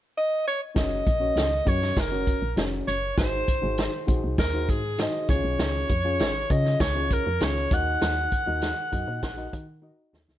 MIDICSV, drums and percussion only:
0, 0, Header, 1, 2, 480
1, 0, Start_track
1, 0, Key_signature, 6, "major"
1, 0, Tempo, 604230
1, 609, Time_signature, 4, 2, 24, 8
1, 8249, End_track
2, 0, Start_track
2, 0, Title_t, "Drums"
2, 604, Note_on_c, 9, 38, 106
2, 605, Note_on_c, 9, 36, 110
2, 605, Note_on_c, 9, 42, 87
2, 684, Note_off_c, 9, 36, 0
2, 684, Note_off_c, 9, 38, 0
2, 685, Note_off_c, 9, 42, 0
2, 847, Note_on_c, 9, 36, 82
2, 847, Note_on_c, 9, 42, 60
2, 927, Note_off_c, 9, 36, 0
2, 927, Note_off_c, 9, 42, 0
2, 1085, Note_on_c, 9, 42, 80
2, 1092, Note_on_c, 9, 38, 96
2, 1164, Note_off_c, 9, 42, 0
2, 1172, Note_off_c, 9, 38, 0
2, 1324, Note_on_c, 9, 42, 52
2, 1325, Note_on_c, 9, 36, 83
2, 1404, Note_off_c, 9, 36, 0
2, 1404, Note_off_c, 9, 42, 0
2, 1444, Note_on_c, 9, 38, 35
2, 1524, Note_off_c, 9, 38, 0
2, 1563, Note_on_c, 9, 36, 87
2, 1565, Note_on_c, 9, 38, 108
2, 1566, Note_on_c, 9, 42, 74
2, 1642, Note_off_c, 9, 36, 0
2, 1645, Note_off_c, 9, 38, 0
2, 1645, Note_off_c, 9, 42, 0
2, 1804, Note_on_c, 9, 36, 80
2, 1804, Note_on_c, 9, 42, 68
2, 1883, Note_off_c, 9, 36, 0
2, 1884, Note_off_c, 9, 42, 0
2, 2042, Note_on_c, 9, 42, 68
2, 2048, Note_on_c, 9, 38, 101
2, 2121, Note_off_c, 9, 42, 0
2, 2127, Note_off_c, 9, 38, 0
2, 2288, Note_on_c, 9, 42, 72
2, 2368, Note_off_c, 9, 42, 0
2, 2523, Note_on_c, 9, 36, 114
2, 2523, Note_on_c, 9, 38, 102
2, 2524, Note_on_c, 9, 42, 84
2, 2602, Note_off_c, 9, 36, 0
2, 2602, Note_off_c, 9, 38, 0
2, 2603, Note_off_c, 9, 42, 0
2, 2763, Note_on_c, 9, 42, 70
2, 2765, Note_on_c, 9, 36, 84
2, 2842, Note_off_c, 9, 42, 0
2, 2844, Note_off_c, 9, 36, 0
2, 3000, Note_on_c, 9, 42, 77
2, 3007, Note_on_c, 9, 38, 93
2, 3079, Note_off_c, 9, 42, 0
2, 3087, Note_off_c, 9, 38, 0
2, 3243, Note_on_c, 9, 36, 85
2, 3247, Note_on_c, 9, 42, 55
2, 3323, Note_off_c, 9, 36, 0
2, 3327, Note_off_c, 9, 42, 0
2, 3482, Note_on_c, 9, 36, 97
2, 3482, Note_on_c, 9, 38, 108
2, 3482, Note_on_c, 9, 42, 74
2, 3561, Note_off_c, 9, 36, 0
2, 3561, Note_off_c, 9, 38, 0
2, 3561, Note_off_c, 9, 42, 0
2, 3724, Note_on_c, 9, 36, 82
2, 3725, Note_on_c, 9, 42, 69
2, 3803, Note_off_c, 9, 36, 0
2, 3805, Note_off_c, 9, 42, 0
2, 3959, Note_on_c, 9, 42, 78
2, 3965, Note_on_c, 9, 38, 97
2, 4038, Note_off_c, 9, 42, 0
2, 4045, Note_off_c, 9, 38, 0
2, 4201, Note_on_c, 9, 36, 101
2, 4207, Note_on_c, 9, 42, 66
2, 4281, Note_off_c, 9, 36, 0
2, 4287, Note_off_c, 9, 42, 0
2, 4445, Note_on_c, 9, 38, 104
2, 4446, Note_on_c, 9, 42, 87
2, 4524, Note_off_c, 9, 38, 0
2, 4525, Note_off_c, 9, 42, 0
2, 4681, Note_on_c, 9, 42, 57
2, 4684, Note_on_c, 9, 36, 76
2, 4760, Note_off_c, 9, 42, 0
2, 4764, Note_off_c, 9, 36, 0
2, 4921, Note_on_c, 9, 42, 78
2, 4929, Note_on_c, 9, 38, 103
2, 5001, Note_off_c, 9, 42, 0
2, 5009, Note_off_c, 9, 38, 0
2, 5165, Note_on_c, 9, 36, 82
2, 5166, Note_on_c, 9, 42, 52
2, 5245, Note_off_c, 9, 36, 0
2, 5246, Note_off_c, 9, 42, 0
2, 5283, Note_on_c, 9, 38, 32
2, 5362, Note_off_c, 9, 38, 0
2, 5404, Note_on_c, 9, 36, 89
2, 5404, Note_on_c, 9, 38, 110
2, 5404, Note_on_c, 9, 42, 84
2, 5483, Note_off_c, 9, 36, 0
2, 5483, Note_off_c, 9, 38, 0
2, 5483, Note_off_c, 9, 42, 0
2, 5646, Note_on_c, 9, 36, 84
2, 5647, Note_on_c, 9, 42, 67
2, 5725, Note_off_c, 9, 36, 0
2, 5726, Note_off_c, 9, 42, 0
2, 5882, Note_on_c, 9, 42, 73
2, 5888, Note_on_c, 9, 38, 97
2, 5961, Note_off_c, 9, 42, 0
2, 5968, Note_off_c, 9, 38, 0
2, 6126, Note_on_c, 9, 36, 98
2, 6129, Note_on_c, 9, 42, 71
2, 6206, Note_off_c, 9, 36, 0
2, 6208, Note_off_c, 9, 42, 0
2, 6368, Note_on_c, 9, 38, 97
2, 6369, Note_on_c, 9, 42, 78
2, 6447, Note_off_c, 9, 38, 0
2, 6448, Note_off_c, 9, 42, 0
2, 6606, Note_on_c, 9, 42, 58
2, 6610, Note_on_c, 9, 36, 74
2, 6685, Note_off_c, 9, 42, 0
2, 6689, Note_off_c, 9, 36, 0
2, 6844, Note_on_c, 9, 42, 74
2, 6851, Note_on_c, 9, 38, 97
2, 6923, Note_off_c, 9, 42, 0
2, 6931, Note_off_c, 9, 38, 0
2, 7091, Note_on_c, 9, 36, 79
2, 7093, Note_on_c, 9, 42, 59
2, 7171, Note_off_c, 9, 36, 0
2, 7173, Note_off_c, 9, 42, 0
2, 7331, Note_on_c, 9, 36, 83
2, 7332, Note_on_c, 9, 38, 105
2, 7332, Note_on_c, 9, 42, 75
2, 7410, Note_off_c, 9, 36, 0
2, 7411, Note_off_c, 9, 38, 0
2, 7412, Note_off_c, 9, 42, 0
2, 7572, Note_on_c, 9, 36, 85
2, 7572, Note_on_c, 9, 42, 74
2, 7651, Note_off_c, 9, 36, 0
2, 7651, Note_off_c, 9, 42, 0
2, 8055, Note_on_c, 9, 38, 86
2, 8134, Note_off_c, 9, 38, 0
2, 8173, Note_on_c, 9, 38, 78
2, 8249, Note_off_c, 9, 38, 0
2, 8249, End_track
0, 0, End_of_file